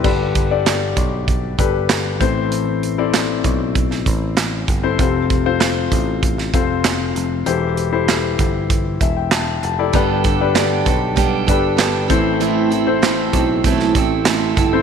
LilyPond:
<<
  \new Staff \with { instrumentName = "Grand piano" } { \time 4/4 \key g \mixolydian \tempo 4 = 97 <d' g' a' b'>8 r16 <d' g' a' d''>4~ <d' g' a' d''>16 r8 <d' g' a' b'>4 <c' e' a' c''>8~ | <c' e' a' c''>8 r16 <c' e' a' d''>4. r4. <c' e' a' c''>16 | <c' f' a' c''>8 r16 <c' f' a' c''>4~ <c' f' a' c''>16 r8 <c' f' a' c''>4 r8 | <e' g' a' c''>8 r16 <e' g' a' c''>4. r4. <e' g' a' d''>16 |
<d' g' a' b'>8 r16 <d' g' a' b'>4~ <d' g' a' b'>16 r8 <d' g' a' b'>4 <c' e' a' c''>8~ | <c' e' a' c''>8 r16 <c' e' a' c''>4. r4. <c' e' a' c''>16 | }
  \new Staff \with { instrumentName = "Grand piano" } { \clef bass \time 4/4 \key g \mixolydian <g, d>4. r2 <a, e>8~ | <a, e>4 r2. | c4. r2 r8 | e4. r4 e''16 g''16 a''8 a''8 |
<g, d>4. r2 <a, e>8~ | <a, e>4 r2. | }
  \new Staff \with { instrumentName = "Steel-string acoustic guitar" } { \time 4/4 \key g \mixolydian r1 | r1 | r1 | r1 |
<g b d' g' a'>8 <d' g' a'>8 <b d' g' a'>8 <d' g' a'>8 <g b d' g' a'>8 <d' g' a'>8 <b d' g' a'>8 <a c' e' a'>8 | <a, e a c' e' a'>8 <a c' e' a'>8 <a c' e' a'>8 <a c' e' a'>8 <a, e a c' e' a'>8 <a c' e' a'>8 <a c' e' a'>8 <a c' e' a'>8 | }
  \new Staff \with { instrumentName = "Picked electric bass" } { \clef bass \time 4/4 \key g \mixolydian g,,4. b,,4 g,,4 a,,8~ | a,,4. b,,4 a,,4 g,,8 | f,,4. a,,4 f,,4 f,,8 | e,,4. g,,4 e,,4 f,,8 |
g,,4. b,,4 g,,4 a,,8~ | a,,4. b,,4 a,,4 g,,8 | }
  \new DrumStaff \with { instrumentName = "Drums" } \drummode { \time 4/4 <cymc bd>8 <hh bd>8 <hc hh sn>8 <hh bd>8 <hh bd>8 <hh bd>8 <hc hh sn>8 <hh bd>8 | hh8 hh8 <hc hh sn>8 <hh bd>8 <hh bd>16 sn16 <hh bd>8 <hc hh sn>8 <hh bd>8 | <hh bd>8 <hh bd>8 <hc hh sn>8 <hh bd>8 <hh bd>16 sn16 <hh bd>8 <hc hh sn>8 hh8 | hh8 hh8 <hc hh sn>8 <hh bd>8 <hh bd>8 <hh bd>8 <hc hh sn>8 hh8 |
<hh bd>8 <hh bd>8 <hc hh sn>8 <hh bd>8 <hh bd>8 <hh bd>8 <hc hh sn>8 <hh bd>8 | hh8 hh8 <hc hh sn>8 <hh bd>8 <hh bd>16 sn16 <hh bd>8 <hc hh sn>8 <hh bd>8 | }
>>